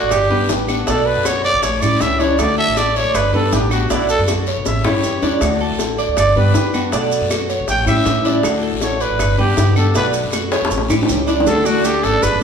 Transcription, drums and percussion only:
0.11 high bongo, long guiro, claves, maracas
0.49 high bongo, low bongo, short guiro, maracas
0.68 short guiro, claves, maracas
0.87 high bongo, long guiro, maracas
1.25 high bongo, short guiro, claves, maracas
1.44 high bongo, short guiro, maracas
1.63 high bongo, long guiro, maracas
1.82 high bongo, claves, maracas
2.01 high bongo, low bongo, short guiro, maracas
2.20 high bongo, short guiro, maracas
2.39 high bongo, long guiro, claves, maracas
2.77 high bongo, short guiro, maracas
2.96 short guiro, maracas
3.14 high bongo, long guiro, claves, maracas
3.52 high bongo, low bongo, short guiro, maracas
3.71 short guiro, claves, maracas
3.90 high bongo, long guiro, maracas
4.09 maracas
4.28 high bongo, short guiro, claves, maracas
4.47 high bongo, short guiro, maracas
4.66 high bongo, long guiro, maracas
4.84 high bongo, claves
5.04 short guiro, maracas
5.22 low bongo, short guiro, maracas
5.41 high bongo, long guiro, claves, maracas
5.79 high bongo, short guiro, maracas
5.99 short guiro, maracas
6.17 high bongo, long guiro, claves, maracas
6.54 high bongo, low bongo, short guiro, maracas
6.74 short guiro, claves, maracas
6.92 high bongo, long guiro, maracas
7.12 maracas
7.30 high bongo, short guiro, claves, maracas
7.49 high bongo, short guiro, maracas
7.68 high bongo, long guiro, maracas
7.87 high bongo, claves, maracas
8.06 high bongo, low bongo, short guiro, maracas
8.25 high bongo, short guiro, maracas
8.43 high bongo, long guiro, claves, maracas
8.81 high bongo, short guiro, maracas
9.00 short guiro, maracas
9.19 high bongo, long guiro, claves, maracas
9.57 high bongo, low bongo, short guiro, maracas
9.76 short guiro, claves, maracas
9.95 high bongo, long guiro, maracas
10.14 maracas
10.33 high bongo, short guiro, claves, maracas
10.52 high bongo, short guiro, maracas
10.65 high bongo
10.71 long guiro, maracas
10.78 high bongo
10.90 low bongo, claves, maracas
11.03 low bongo
11.09 short guiro, maracas
11.15 low bongo
11.28 short guiro, maracas
11.40 low bongo
11.47 cowbell, long guiro, maracas
11.66 maracas
11.85 cowbell, short guiro, maracas
12.03 short guiro, maracas
12.22 cowbell, long guiro, maracas

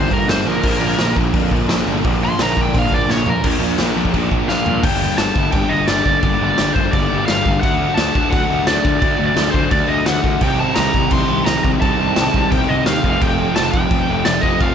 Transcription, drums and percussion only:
0.11 kick
0.29 snare, open hi-hat
0.63 kick, crash
0.99 snare, open hi-hat
1.17 kick
1.34 kick, open hi-hat
1.51 kick
1.69 snare, open hi-hat
2.04 kick, open hi-hat
2.39 snare, open hi-hat
2.57 kick
2.74 kick, open hi-hat
2.92 kick
3.10 snare
3.26 floor tom
3.44 kick, crash
3.78 snare, crash
4.05 kick
4.14 kick, crash
4.31 kick
4.49 snare
4.66 floor tom
4.84 kick, crash
5.18 snare, crash
5.36 kick
5.52 kick, crash
5.88 snare, crash
6.06 kick
6.23 kick, crash
6.58 snare, crash
6.76 kick
6.93 kick, crash
7.28 snare, crash
7.46 kick
7.63 kick, crash
7.98 snare, crash
8.15 kick
8.32 kick, crash
8.67 snare, crash
8.85 kick
9.02 kick, crash
9.37 snare, crash
9.54 kick
9.71 kick, crash
10.06 snare, crash
10.24 kick
10.41 kick, crash
10.76 snare, crash
10.94 kick
11.11 kick, crash
11.46 snare, crash
11.64 kick
11.82 kick, crash
12.16 snare, crash
12.34 kick
12.52 kick, crash
12.86 snare, crash
13.04 kick
13.22 kick, crash
13.56 snare, crash
13.74 kick
13.91 kick, crash
14.25 snare, crash
14.43 kick
14.60 kick, crash

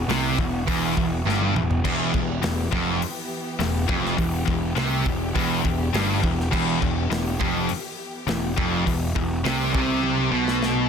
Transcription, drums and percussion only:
0.10 snare, open hi-hat
0.39 kick
0.68 kick, open hi-hat
0.97 kick
1.29 snare
1.42 high tom
1.56 mid tom
1.71 floor tom
1.85 kick, crash
2.14 kick
2.43 snare, open hi-hat
2.73 kick
3.02 open hi-hat
3.60 snare, open hi-hat
3.89 kick
4.05 snare
4.18 kick, open hi-hat
4.48 kick
4.77 snare, open hi-hat
5.06 kick
5.36 kick, open hi-hat
5.65 kick
5.94 snare, open hi-hat
6.24 kick
6.40 snare
6.53 kick, crash
6.82 kick
7.12 snare, open hi-hat
7.41 kick
7.69 open hi-hat
8.28 snare, open hi-hat
8.58 kick
8.87 kick, open hi-hat
9.16 kick
9.45 snare, open hi-hat
9.75 kick
10.03 high tom
10.18 high tom
10.48 snare
10.63 snare

